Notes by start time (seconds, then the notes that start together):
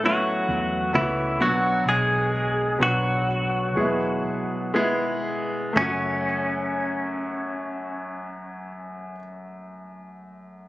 Already playing: A1 A2 E3 B3 C#4 E4
0.03 F#3 A3 B3 C#4 E4 F#4
0.49 E2
0.93 C#2 A3 B3 C#4 E4 F#4
0.97 E3
1.40 B1 B2 F#3 B3 D4 F#4
1.85 B1 G#4
1.90 G#3
2.79 B1 F#3 B3 D4 F#4
2.84 F#3
3.75 E2 B2 G#3 B3 E4 G#4
4.25 B1
4.74 G#3 B3 E4 G#4
5.25 E2
5.73 F#1 F#2 A3 C#4
5.77 C#4 F#4